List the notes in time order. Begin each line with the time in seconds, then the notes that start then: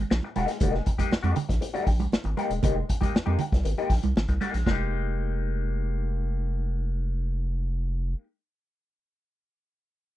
0.10 A#1, muted clean electric guitar stroke, snare, muted conga
0.23 muted clean electric guitar stroke, muted conga
0.36 E1 G#3 A#3 D#4 G4, snare, closed hi-hat, high conga
0.48 muted clean electric guitar stroke, snare, closed hi-hat
0.60 F1 G#3 A#3 D#4 G4, kick, closed hi-hat, muted conga, low conga
0.73 muted clean electric guitar stroke, snare, muted conga
0.85 muted clean electric guitar stroke, kick, closed hi-hat
0.98 F2 G#3 A#3 D#4 G4, kick, closed hi-hat, high conga
1.11 F2, muted clean electric guitar stroke, snare, muted conga
1.23 F2 G#3 A#3 D#4 G4, closed hi-hat, muted conga, high conga
1.36 muted clean electric guitar stroke, closed hi-hat, low conga
1.49 A#1, muted clean electric guitar stroke, kick, snare, closed hi-hat
1.61 muted clean electric guitar stroke, closed hi-hat, muted conga
1.74 G#3 A#3 D#4 G4, closed hi-hat, muted conga
1.86 A#1, muted clean electric guitar stroke, kick, open hi-hat
2.00 muted clean electric guitar stroke, closed hi-hat, high conga
2.12 G#1, snare, muted conga
2.24 G#1, muted clean electric guitar stroke, closed hi-hat, muted conga
2.37 G#3 A#3 D#4 G4, closed hi-hat, high conga
2.50 E1, muted clean electric guitar stroke, closed hi-hat
2.63 F1 G#3 A#3 D#4 G4, kick, closed hi-hat, muted conga, low conga
2.76 muted clean electric guitar stroke
2.89 muted clean electric guitar stroke, kick, closed hi-hat
3.01 F2 G#3 A#3 D#4 G4, kick, closed hi-hat, high conga
3.14 F2, muted clean electric guitar stroke, snare, muted conga
3.26 F2 G#3 A#3 D#4 G4, muted conga, high conga
3.39 muted clean electric guitar stroke, closed hi-hat, low conga
3.52 C2, muted clean electric guitar stroke, kick, snare, closed hi-hat
3.63 G#1, muted clean electric guitar stroke, closed hi-hat, muted conga
3.78 G#3 A#3 D#4 G4, closed hi-hat, muted conga
3.90 A#1, muted clean electric guitar stroke, kick, snare, open hi-hat
4.03 C2, muted clean electric guitar stroke, closed hi-hat, high conga
4.16 G#1, snare, muted conga
4.28 C2, muted clean electric guitar stroke, kick, closed hi-hat
4.41 G#3 A#3 D#4 G4, snare, closed hi-hat, high conga
4.53 A#1, muted clean electric guitar stroke, snare, closed hi-hat
4.66 F1 G#3 A#3 D#4, kick, snare, high conga
4.71 G4